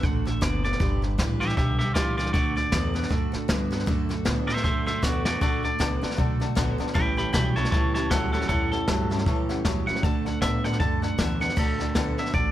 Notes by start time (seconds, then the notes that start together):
0.03 A1 D3 A3 D4 F#4 A4 F#5, kick, snare
0.25 D4 F#4 A4 E5, snare
0.41 F#1 D3 A3 B3 D4 F#4 A4 D5, kick, snare, hi-hat pedal
0.64 D3 B3 D4 F#4 A4 D5, snare
0.73 snare
0.80 G1 G2 D3 G3 D4 G4 B4, kick, snare
1.02 D4 G4 B4, snare
1.18 A1 G2 E3 G3 D4 G4 B4, kick, snare, hi-hat pedal
1.40 G2 E3 D4 G4 B4 E5, snare
1.49 snare
1.57 B1 G2 D3 G3 D4 G4 B4 E5, kick, snare
1.79 D4 G4 B4 E5, snare
1.94 C#2 G2 E3 G3 D4 F4 G4 B4 D5, kick, snare, hi-hat pedal
2.17 G2 E3 D4 F4 B4 D5, snare
2.26 snare
2.33 D2 D3 A3 D4 F#4 A4 D5, kick, snare
2.56 D4 F#4 A4 D5, snare
2.72 E2 D3 A3 B3 D4 F#4 A4, kick, snare, hi-hat pedal
2.94 D3 B3 D4 F#4 A4, snare
3.03 snare
3.09 F#2 D3 A3 D4 F#4 A4, kick, snare
3.32 D4 F#4 A4, muted upright bass stroke, snare
3.48 G2 D3 A3 B3 D4 F#4 A4, kick, snare, hi-hat pedal
3.71 D3 B3 D4 F#4 A4, snare
3.79 snare
3.86 F#2 D3 A3 D4 F#4 A4, kick, snare
4.09 D4 F#4 A4, snare
4.25 A2 D3 A3 B3 D4 F#4 A4, kick, snare, hi-hat pedal
4.47 D3 B3 D4 F#4 A4 C5 E5, snare
4.57 snare
4.63 F#2 D3 A3 D4 F#4 A4 C5 E5, kick, snare
4.86 D4 F#4 A4 C5 E5, snare
5.02 E2 D3 A3 B3 D4 F#4 A4 D5, kick, snare, hi-hat pedal
5.25 D3 B3 D4 F#4 A4 D5, snare
5.41 D2 D3 A3 D4 F#4 A4 D5 F#5 A5, kick, snare
5.63 D4 F#4 A4 D5 F#5 A5, snare
5.79 C#2 D3 A3 B3 D4 F#4 A4 D5 F#5 A5, kick, snare, hi-hat pedal
6.01 D3 B3 D4 F#4 A4 D5 F#5 A5, muted upright bass stroke, snare
6.11 snare
6.17 B1 D3 A3 D4 F#4 A4 D5 F#5 A5, kick, snare
6.40 D4 F#4 A4 D5 F#5 A5, snare
6.55 A#1 D3 A3 B3 D4 F#4 A4 D5 F#5 A5, kick, snare, hi-hat pedal
6.78 D3 B3 D4 F#4 A4 D5 F#5 A5, muted upright bass stroke, snare
6.87 snare
6.94 A1 A2 E3 G3 C#4 G4 A4 C#5 E5 G5 A5 B5, kick, snare
7.16 G3 C#4 G4 A4 C#5 E5 G5 A5 B5, snare
7.33 B1 A2 E3 F#3 G3 C#4 G4 A4 C#5 E5 G5 A5 B5, kick, snare, hi-hat pedal
7.56 A2 F#3 G3 C#4 G4 A4 C#5 E5 A5 B5, snare
7.65 snare
7.71 C#2 A2 E3 G3 G4 A4 C#5 E5 A5, kick, snare
7.94 G3 C#4 G4 A4 C#5 E5 A5, snare
8.10 D2 A2 E3 F#3 G3 C#4 G4 A4 C#5 E5 F#5 A5, kick, snare, hi-hat pedal
8.33 A2 F#3 G3 C#4 G4 A4 C#5 E5 F#5 A5, snare
8.41 snare
8.48 E2 A2 E3 G3 C#4 G4 A4 C#5 E5 F#5 A5, kick, snare
8.72 G3 C#4 G4 A4 C#5 E5 F#5, snare
8.88 G2 A2 E3 F#3 G3 C#4 G4 A4 C#5 E5 A5, kick, snare, hi-hat pedal
9.10 A2 F#3 G3 C#4 G4 A4 C#5 E5 A5, snare
9.18 snare
9.26 F#2 A2 E3 G3 C#4 G4 A4 C#5 E5 A5, kick, snare
9.49 G3 C#4 G4 A4 C#5 E5 F#5, snare
9.65 E2 A2 E3 F#3 G3 C#4 G4 A4 C#5 E5 A5, kick, snare, hi-hat pedal
9.87 A2 F#3 G3 C#4 G4 A4 C#5 E5 F#5, muted upright bass stroke, snare
9.96 snare
10.02 D2 D3 A3 D4 F#4 A4 D5 F#5 A5, kick, snare
10.25 D4 F#4 A4 D5 F#5 A5, snare
10.41 A2 D3 A3 B3 D4 F#4 A4 D5 E5 F#5 A5, kick, snare, hi-hat pedal
10.64 D3 B3 D4 F#4 A4 D5 F#5 A5, snare
10.73 snare
10.80 F#2 D3 A3 D4 F#4 A4 D5 F#5 A5, kick, snare
11.02 D4 F#4 A4 D5 F#5 A5, snare
11.18 E2 D3 A3 B3 D4 F#4 A4 D5 E5 F#5 A5, kick, snare, hi-hat pedal
11.40 D3 B3 D4 F#4 A4 D5 F#5 A5, snare
11.49 snare
11.56 D2 D3 A3 D4 F#4 A4 D5 F#5 A5, kick, snare, crash
11.79 D4 F#4 A4 D5 F#5 A5, snare
11.95 D3 A3 B3 D4 F#4 A4 D5 F#5 A5, kick, snare, hi-hat pedal
12.18 D3 B3 D4 F#4 A4 D5 E5 F#5 A5, snare
12.26 snare
12.33 A1 D3 A3 D4 F#4 A4 D5 F#5 A5, kick, snare